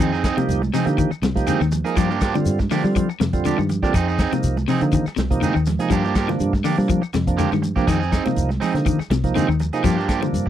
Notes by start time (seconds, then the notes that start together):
0.00 F2 D#3 C4 D#4 G#4, high conga, shekere
0.12 C4 D#4 G#4, shekere
0.24 C4 D#4 G#4, kick, snare, closed hi-hat, claves, shekere
0.37 C3 F3 A#3 D#4 G4, muted clean electric guitar stroke, muted fingered electric bass stroke, closed hi-hat, high conga, shekere
0.48 C2, closed hi-hat, high conga, shekere
0.62 muted clean electric guitar stroke, high conga, shekere
0.74 C3 C4 D#4 G#4, open hi-hat, low conga, claves, shekere
0.86 D3 F3 A#3 D#4 G4, muted clean electric guitar stroke, closed hi-hat, shekere
0.98 D#3, muted clean electric guitar stroke, kick, closed hi-hat, high conga, shekere
1.11 muted clean electric guitar stroke, muted fingered electric bass stroke, claves, shekere
1.22 C2 C3, muted clean electric guitar stroke, snare, closed hi-hat, high conga, shekere
1.35 F3 A#3 D#4 G4, kick, closed hi-hat, shekere
1.47 D3 C4 D#4 G#4, closed hi-hat, high conga, shekere
1.61 D#2 D#3, muted clean electric guitar stroke, snare, claves, shekere
1.72 muted clean electric guitar stroke, closed hi-hat, low conga, shekere
1.84 F3 A#3 D#4 G#4 A#4, closed hi-hat, shekere
1.96 G2 F3 A#3 D4 G4, kick, closed hi-hat, claves, shekere
2.10 F3 A#3 D4 G4, shekere
2.21 F3 A#3 D4 G4, kick, snare, closed hi-hat, claves, shekere
2.34 D3 G3 C4 F4, muted clean electric guitar stroke, high conga, shekere
2.46 G2, closed hi-hat, high conga, shekere
2.59 muted clean electric guitar stroke, kick, snare, high conga, shekere
2.71 D3 F3 A#3 D4 G4, open hi-hat, low conga, claves, shekere
2.83 D3 G3 C4 F4, muted clean electric guitar stroke, shekere
2.96 F3, muted clean electric guitar stroke, kick, closed hi-hat, shekere
3.09 muted clean electric guitar stroke, claves, shekere
3.20 F2 C3, muted clean electric guitar stroke, snare, closed hi-hat, high conga, shekere
3.33 D3 G3 C4 F4, kick, closed hi-hat, shekere
3.45 D3 F3 D4 G4, snare, closed hi-hat, high conga, shekere
3.58 G2 D#3, muted clean electric guitar stroke, claves, shekere
3.69 muted clean electric guitar stroke, closed hi-hat, low conga, shekere
3.83 D3 G3 A#3 C4 D4 F4 G4, kick, snare, shekere
3.94 F2 C4 D#4 G#4, muted clean electric guitar stroke, kick, closed hi-hat, claves, shekere
4.08 C4 D#4 G#4, shekere
4.19 C4 D#4 G#4, kick, snare, closed hi-hat, claves, shekere
4.32 C3 F3 A#3 D#4, muted fingered electric bass stroke, muted clean electric guitar stroke, closed hi-hat, high conga, shekere
4.43 C2, closed hi-hat, high conga, shekere
4.57 muted clean electric guitar stroke, high conga, shekere
4.68 C3 C4 D#4 G#4, open hi-hat, low conga, claves, shekere
4.81 C3 D3 F3 A#3 D#4, muted clean electric guitar stroke, closed hi-hat, shekere
4.92 D#3, muted clean electric guitar stroke, kick, closed hi-hat, shekere
5.06 muted fingered electric bass stroke, muted clean electric guitar stroke, snare, claves, shekere
5.16 C2 C3, muted clean electric guitar stroke, snare, closed hi-hat, high conga, shekere
5.30 C3 F3 A#3 D#4, kick, closed hi-hat, low conga, shekere
5.41 D3 C4 D#4 G#4, closed hi-hat, high conga, shekere
5.54 D#2 D#3, muted clean electric guitar stroke, claves, shekere
5.66 muted clean electric guitar stroke, snare, closed hi-hat, high conga, low conga, shekere
5.79 C3 F3 A#3 D#4 G#4, closed hi-hat, shekere
5.90 G2 F3 A#3 D4 G4, kick, closed hi-hat, claves, shekere
6.04 F3 A#3 D4 G4, shekere
6.15 F3 A#3 D4 G4, kick, snare, closed hi-hat, claves, shekere
6.28 C3 D3 F3 A#3 D4, muted clean electric guitar stroke, snare, high conga, shekere
6.40 G2, closed hi-hat, high conga, shekere
6.53 muted clean electric guitar stroke, kick, snare, high conga, shekere
6.64 D3 A#3 D4 G4, open hi-hat, low conga, claves, shekere
6.78 C3 F3 G3 A#3 D4, muted clean electric guitar stroke, shekere
6.88 F3, muted clean electric guitar stroke, kick, closed hi-hat, shekere
7.02 muted clean electric guitar stroke, claves, shekere
7.14 F2 C3, muted clean electric guitar stroke, snare, closed hi-hat, high conga, shekere
7.27 C3 F3 A#3 D4, kick, closed hi-hat, shekere
7.37 D3 F3 A#3 D4 G4, closed hi-hat, high conga, shekere
7.51 G2 D#3, muted clean electric guitar stroke, snare, high conga, claves, shekere
7.62 muted clean electric guitar stroke, closed hi-hat, low conga, shekere
7.76 C3 F3 A#3 D4 G4, kick, low conga, shekere
7.87 F2 D#3 C4 D#4 G#4, kick, closed hi-hat, claves, shekere
8.00 C4 G#4, shekere
8.11 C4 D#4 G#4, kick, snare, closed hi-hat, claves, shekere
8.25 C3 F3 A#3 D#4, muted clean electric guitar stroke, muted fingered electric bass stroke, snare, closed hi-hat, high conga, shekere
8.36 C2, closed hi-hat, high conga, shekere
8.49 muted clean electric guitar stroke, snare, high conga, shekere
8.60 C4 D#4 G#4, open hi-hat, high conga, low conga, claves, shekere
8.74 C3 D3 F3 A#3 D#4, muted clean electric guitar stroke, snare, closed hi-hat, shekere
8.86 D#3, muted clean electric guitar stroke, kick, closed hi-hat, high conga, shekere
8.99 muted clean electric guitar stroke, muted fingered electric bass stroke, snare, claves, shekere
9.10 C2 C3, muted clean electric guitar stroke, snare, closed hi-hat, high conga, shekere
9.24 C3 F3 A#3 D#4, kick, closed hi-hat, low conga, shekere
9.35 D3 C4 D#4 G#4, snare, closed hi-hat, high conga, shekere
9.48 D#2 D#3, muted clean electric guitar stroke, claves, shekere
9.59 muted clean electric guitar stroke, closed hi-hat, low conga, shekere
9.73 C3 F3 A#3 D#4 G#4, closed hi-hat, shekere
9.83 G2 F3 A#3 D4 G4, kick, closed hi-hat, claves, shekere
9.97 F3 A#3 D4 G4, shekere
10.08 F3 A#3 D4 G4, kick, snare, closed hi-hat, claves, shekere
10.21 C3 D3 F3 A#3 D4, muted clean electric guitar stroke, high conga, shekere
10.33 G2, closed hi-hat, high conga, shekere
10.46 muted clean electric guitar stroke